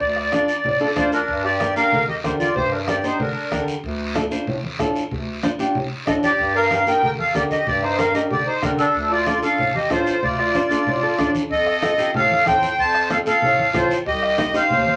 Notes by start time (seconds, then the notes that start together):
0.00 D2 D5, bombo low, high conga, long guiro
0.16 bombo rim
0.32 D4 F4 A4, bombo rim, high conga, short guiro
0.48 short guiro
0.64 A2, high conga, low conga, long guiro
0.80 D4 F4 A4
0.96 D2 D4 F4 A4 C5, bombo low, bombo rim, high conga, short guiro
1.12 D4 A#4, short guiro
1.28 G2, bombo low, high conga, long guiro
1.44 G4 D5, bombo rim
1.60 D4 G4 A#4, bombo rim, high conga, short guiro
1.76 D4 G4 A#4 F5, short guiro
1.92 D3, high conga, low conga, long guiro
2.08 G4 D#5, high conga
2.24 D3 D4 G4 A#4 C5, bombo low, bombo rim, high conga, short guiro
2.40 F4 D5, high conga, short guiro
2.56 G2 G4 C5, bombo low, high conga, low conga, long guiro
2.72 D4 A#4, bombo rim
2.87 D4 G4 A#4 D5, bombo rim, high conga, short guiro
3.03 D4 D#4 G4 C5, short guiro
3.19 D3 D4 A#4, high conga, low conga, long guiro
3.51 D3 D4 G4 A#4, bombo low, bombo rim, high conga, short guiro
3.68 short guiro
3.84 D2, bombo low, high conga, long guiro
4.15 D4 F4 A4, bombo rim, high conga, short guiro
4.31 D4 F4 C5, short guiro
4.47 A2, high conga, low conga, long guiro
4.63 high conga
4.79 A2 D4 F4 A4, bombo low, bombo rim, high conga, short guiro
4.95 short guiro
5.11 D2, bombo low, high conga, low conga, long guiro
5.43 D4 F4 C5, bombo rim, high conga, short guiro
5.59 D4 F4 G4, short guiro
5.75 A2, high conga, low conga, long guiro
6.07 A2 D4 F4 A4 D#5, bombo low, bombo rim, high conga, short guiro
6.23 G4 D5, high conga, short guiro
6.39 G2, bombo low, high conga, long guiro
6.55 A#4 F5
6.71 D4 G4 A#4, bombo rim, high conga, short guiro
6.87 D4 G4 A#4 G5, short guiro
7.03 D3 A#4 G5, high conga, low conga, long guiro
7.19 A4 F5, high conga
7.34 D3 D4 G4 A#4 D5, bombo low, bombo rim, high conga, short guiro
7.51 G4 D#5, high conga, short guiro
7.67 G2 G4 D5, bombo low, high conga, low conga, long guiro
7.83 D#4 C5, bombo rim
7.98 D4 G4 A#4 F5, bombo rim, high conga, short guiro
8.14 D4 G4 A#4 D#5, short guiro
8.31 D3 G4 D5, high conga, low conga, long guiro
8.47 D#4 C5
8.62 D3 D4 G4 A#4, bombo low, bombo rim, high conga, low conga, short guiro
8.78 D4 A4, short guiro
8.95 D2, bombo low, high conga, long guiro
9.11 F4 D5
9.26 D4 F4 A4, bombo rim, high conga, short guiro
9.42 D4 F4 A4 F5, short guiro
9.58 A2, high conga, low conga, long guiro
9.75 G4 D#5, high conga
9.90 A2 D4 F4 A4 C5, bombo low, bombo rim, high conga, short guiro
10.06 short guiro
10.23 D2 F4 D5, bombo low, high conga, low conga, long guiro
10.39 bombo rim
10.54 D4 F4 C5, bombo rim, high conga, short guiro
10.70 D4 F4 A4, short guiro
10.87 A2, high conga, low conga, long guiro
11.03 A4
11.18 A2 D4 F4 A4 D5, bombo low, bombo rim, high conga, short guiro
11.35 high conga, short guiro
11.51 F2 A4 D#5, bombo low, high conga, long guiro
11.67 bombo rim
11.82 C4 F4 A4, bombo rim, high conga, short guiro
11.98 C4 F4 G4, short guiro
12.14 A2 A4 F5, high conga, low conga, long guiro
12.30 high conga
12.46 A2 C4 F4 A4 C5 G5, bombo low, bombo rim, high conga, short guiro
12.62 high conga, short guiro
12.78 F2 C5 A5, bombo low, high conga, long guiro
12.95 bombo rim
13.10 C4 F4 A4 F5, bombo rim, high conga, short guiro
13.26 C4 F4 A4 F5, short guiro
13.42 A2, high conga, low conga, long guiro
13.58 high conga
13.73 A2 C4 F4 A4 C5, bombo low, bombo rim, high conga, low conga, short guiro
13.91 short guiro
14.06 C2 G4 D#5, bombo low, high conga, long guiro
14.23 bombo rim
14.37 D#4 G4 C5, bombo rim, high conga, short guiro
14.54 D#4 G4 C5 F5, short guiro
14.70 D#2, high conga, low conga, long guiro
14.86 high conga